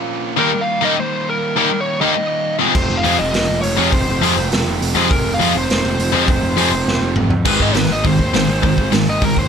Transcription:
Already playing: A#2 F3 A#3 C#4
0.36 D#3 G3 A#3 D#4 G4 A#4
0.61 F5
0.82 D#3 G3 A#3 D#4 G4 D#5
1.00 C5
1.29 A#4
1.56 D#3 G3 A#3 D#4 G4 A#4
1.80 C#5
2.01 D#3 G3 A#3 D#4 G4 D#5
2.59 F2 C3 F3 G#3 C4 G#4
2.75 F1 C5, kick, crash
2.90 F1
2.97 F5
3.04 F2 C3 F3 G#3 C4 G#4, open hi-hat
3.19 F1 D#5
3.34 F1, snare, open hi-hat
3.49 F1
3.62 F1 C#5, open hi-hat
3.77 F2 C3 F3 G#3 C4 G#4
3.92 F1 C5, kick, open hi-hat
4.08 F1
4.21 F2 C3 F3 G#3 C4 G#4, open hi-hat
4.37 F1
4.52 F1, snare, open hi-hat
4.66 F1
4.81 F1, open hi-hat
4.95 F2 C3 F3 G#3 C4 G#4
5.11 F1 A#4, kick, open hi-hat
5.25 F1
5.34 F5
5.39 F2 C3 F3 G#3 C4 G#4, open hi-hat
5.55 F1 C5
5.70 F1, snare, open hi-hat
5.84 F1
5.99 F1, open hi-hat
6.12 F2 C3 F3 G#3 C4 G#4
6.28 F1, kick, open hi-hat
6.43 F1
6.56 F2 C3 F3 G#3 C4 G#4, open hi-hat
6.72 F1
6.86 F1, snare
7.01 F1
7.16 F1, mid tom
7.30 F2, floor tom
7.45 G#1 G#2 D#3 G#3 C4 D#4 G#4 B4, kick, crash
7.60 G#1 D#5, kick
7.74 G#1 G#2 D#3 B4, snare, open hi-hat
7.89 G#1 G#2 D#3 G#3 C4 D#4 G#4 D#5
8.04 G#1 G#2 D#3 C5, kick, open hi-hat
8.19 D#2, kick
8.34 G#1 G#2 D#3 G#3 C4 D#4 G#4, snare, open hi-hat
8.48 G#1
8.63 G#1 G#2 D#3 G#3 C4 D#4 G#4, kick, open hi-hat
8.78 G#1, kick
8.92 G#1 G#2 D#3, snare, open hi-hat
9.07 G#1 G#2 D#3 G#3 C4 D#4 G#4 D#5
9.22 G#1 G#2 D#3 A#4, kick, open hi-hat
9.37 D#2 C5, kick

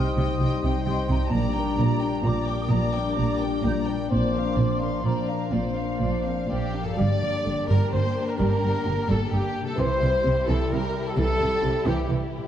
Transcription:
Already playing: C3 G3 D#4 G4 C5 D#5 G5 D#6
0.09 G3
0.17 C2 C3 G4 D#5 G5
0.25 D#4
0.39 C2 C3 G4 D#5 G5
0.56 C5
0.63 C2 C3 G4 D#5 G5
0.71 D#5
0.85 C2 C3 G4 D#5 G5 C6
1.01 C5
1.09 C2 C3 G4 D#5 G5 A#5
1.16 G4
1.25 A5
1.30 A#1 A#2 G3 A#3 D4 D5 A#5
1.34 D5
1.47 A#3
1.54 D4 A#4 G5
1.61 D4
1.78 A#1 A#2 A#3 G4 D5 A#5
1.93 D5
2.00 D4 A#4 G5
2.08 G4
2.22 A#1 A#2 G3 A#3 D4 D5 G5 A#5 D6
2.39 D5
2.47 D4 A#4 G5
2.54 G4
2.62 D#6
2.69 A#1 A#2 G3 D4 D5 A#5
2.73 A#3 D6
2.86 A#3
2.95 D4 A#4 G5
3.02 D4
3.17 A#1 A#2 A#3 G4 D5 A#5
3.33 D5
3.41 D4 A#4 G5
3.48 G4
3.63 A#1 A#2 G3 A#3 D4 D5 G5 A#5 G6
3.80 D5
3.87 D4 A#4 G5
3.95 G4
4.10 A#1 A#2 A#3 C4 D4 C5 D5 D6
4.27 F3
4.34 D4 A#4 F5
4.41 C4
4.56 A#1 A#2 C4 F4 C5 D5
4.73 D5
4.81 D4 A#4 F5 C6
4.90 C5
5.02 A#1 A#2 A#3 C4 D4 C5 D5 F5 A#5
5.20 D5
5.28 D4 A#4 F5
5.37 F4
5.50 A#1 A#2 A#3 C4 D4 C5 D5 F5
5.69 F3
5.75 D4 F5
5.79 A#4
5.85 C4
6.00 A#1 A#2 D4 F4 C5 D5
6.19 D5
6.24 C4 A#4 F5
6.35 C5
6.48 A#1 A#2 A#3 G4 C5 D5 F5
6.67 D5
6.73 D4 A#4 F5
6.81 G2 F4 A4
6.86 A#3 G4 A4
6.94 G2 G3 A#3 D5
6.99 G1 D4 G4 D5
7.21 G1 G2 G3
7.44 G1 G2 D3
7.68 G1 G2 G3 A#4
7.92 G1 G2 G3 C5
8.28 A#4
8.38 G1 G2 G3 A#4
8.63 G1 G2 G3
8.86 G1 G2 D3
9.08 G1 G2 G3 A4
9.31 G1 G2 G3 G4
9.61 C3
9.66 G3 A4
9.70 E4
9.75 C3 E3 G3 G4 C5 E5
9.79 C2 E4
10.01 C2 C3 E3
10.24 C2 C3
10.46 C2 C3 E3 A4
10.69 C2 C3 E3 A#4
11.07 A4
11.17 C2 C3 E3 A4
11.39 C2 C3 E3
11.62 C2 C3
11.86 C2 C3 E3 G4
12.08 C2 C3 E3
12.38 A#2
12.42 A#3

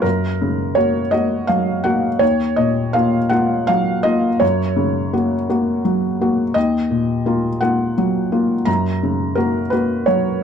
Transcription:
0.02 F#2 A#4
0.41 C#3
0.75 A#3 F#4 C#5
1.11 A#3 F#4 D#5
1.47 F#3 F5
1.84 A#3 F#4 F#5
2.19 D#2 C#5
2.56 A#2 D#5
2.93 A#3 F4 F5
3.29 A#3 F4 F#5
3.67 F#3 F5
4.03 A#3 F4 D#5
4.40 F#2 C#5
4.76 C#3
5.13 A#3 F#4
5.50 A#3 F#4
5.85 F#3
6.21 A#3 F#4
6.54 D#2 D#5
6.91 A#2
7.26 A#3 F4
7.61 A#3 F4 F#5
7.98 F#3
8.32 A#3 F4
8.65 F#2 A#5
9.03 C#3
9.35 A#3 F#4 A#4
9.70 A#3 F#4 B4
10.06 F#3 C#5

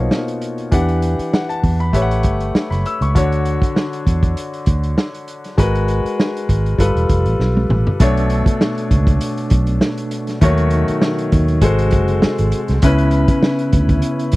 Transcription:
Already playing: B2 A#3 D#4 F4 C5 C#5
0.11 snare
0.28 closed hi-hat
0.42 closed hi-hat
0.58 closed hi-hat
0.71 E2 E3 D4 G4 F#5, kick, closed hi-hat
0.89 closed hi-hat
1.02 closed hi-hat
1.19 muted fingered electric bass stroke, closed hi-hat
1.33 F#5, snare
1.49 A5, closed hi-hat
1.64 E2, kick, open hi-hat
1.80 B5, closed hi-hat
1.93 A1 A3 G4 B4 C#5 E5, kick, closed hi-hat
2.02 F#5
2.11 closed hi-hat
2.23 G1, kick, closed hi-hat
2.40 closed hi-hat
2.55 muted fingered electric bass stroke, snare
2.71 F#1 B5, snare, closed hi-hat
2.86 E6, closed hi-hat
3.01 C#2 C#6, closed hi-hat
3.15 D2 D3 D4 F#4 C#5, kick, closed hi-hat
3.32 closed hi-hat
3.45 closed hi-hat
3.62 kick, closed hi-hat
3.76 snare
3.93 closed hi-hat
4.07 E2, kick, closed hi-hat
4.23 kick, closed hi-hat
4.37 closed hi-hat
4.54 closed hi-hat
4.66 D2, kick, closed hi-hat
4.83 closed hi-hat
4.98 snare
5.14 closed hi-hat
5.28 closed hi-hat
5.44 snare, closed hi-hat
5.58 G#1 G#3 F#4 A#4 B4, kick, closed hi-hat
5.75 closed hi-hat
5.88 closed hi-hat
6.05 muted fingered electric bass stroke, closed hi-hat
6.20 snare
6.37 closed hi-hat
6.49 G#1, kick, closed hi-hat
6.66 closed hi-hat
6.78 G1 G3 F4 A4 B4, kick, closed hi-hat
6.95 E1, closed hi-hat
7.09 F1, kick, closed hi-hat
7.26 A1, closed hi-hat
7.39 B1, snare
7.57 high tom
7.69 A1, mid tom
7.87 floor tom
8.00 B1 B2 A3 D4 C#5, kick, closed hi-hat
8.17 closed hi-hat
8.30 closed hi-hat
8.46 muted fingered electric bass stroke, kick, closed hi-hat
8.61 snare
8.78 closed hi-hat
8.91 C#2, kick, closed hi-hat
9.07 kick, closed hi-hat
9.21 closed hi-hat
9.37 closed hi-hat
9.50 B1, kick, closed hi-hat
9.67 closed hi-hat
9.81 snare
9.98 closed hi-hat
10.11 closed hi-hat
10.27 snare, closed hi-hat
10.41 D#2 D#3 F#3 A3 D#4 F#4 C#5, kick, closed hi-hat
10.57 closed hi-hat
10.70 closed hi-hat
10.88 muted fingered electric bass stroke, closed hi-hat
11.01 snare
11.18 closed hi-hat
11.32 D#2, kick, closed hi-hat
11.48 closed hi-hat
11.61 G#1 C3 G#3 F#4 A4 C5, kick, closed hi-hat
11.79 closed hi-hat
11.91 F#1, kick, closed hi-hat
12.08 closed hi-hat
12.22 muted fingered electric bass stroke, snare
12.38 G#1, closed hi-hat
12.52 closed hi-hat
12.68 C2, snare, closed hi-hat
12.82 C#2 C#3 B3 C#4 E4 B4, kick, closed hi-hat
12.98 closed hi-hat
13.11 closed hi-hat
13.28 muted fingered electric bass stroke, kick, closed hi-hat
13.43 snare
13.59 closed hi-hat
13.73 D2, kick, closed hi-hat
13.89 kick, closed hi-hat
14.02 closed hi-hat
14.19 closed hi-hat
14.32 closed hi-hat

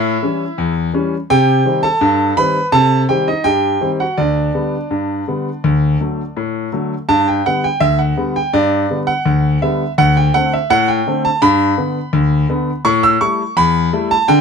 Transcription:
Already playing: A2 E4 E5
0.22 E3 G3 C#4
0.58 E2
0.93 E3 G3 C#4
1.30 C3 G4 G5
1.65 D#3 G3 C4
1.83 A4 A5
2.01 G2
2.37 D#3 G3 C4 B4 B5
2.72 C3 A4 A5
3.09 D#3 G3 C4 G4 G5
3.28 D#4 D#5
3.44 G2 G4 G5
3.81 D#3 G3 C4
4.00 F#4 F#5
4.18 D2 D4 D5
4.54 D3 G3 B3
4.91 G2
5.28 D3 G3 B3
5.64 D2
6.00 D3 F#3 A3
6.37 A2
6.72 D3 F#3 A3
7.09 G2 A5
7.28 G5
7.46 D3 G3 B3 F#5
7.64 G5
7.80 D2 E5
7.99 F#5
8.17 D3 G3 B3
8.36 G5
8.53 G2 D5
8.90 D3 G3 B3
9.07 F#5
9.26 D2
9.62 D3 G3 B3 E5
9.98 D2 F#5
10.17 G5
10.34 D3 A3 C4 F#5
10.53 E5
10.70 A2 F#5
10.88 G5
11.07 D3 A3 C4
11.25 A5
11.42 G2 B5
11.78 D3 B3
12.13 D2
12.49 D3 B3
12.85 A2 C#6
13.03 E6
13.21 G3 A3 E4 C#6
13.57 E2 B5
13.93 G3 A3 E4
14.11 A5
14.28 D3 G5

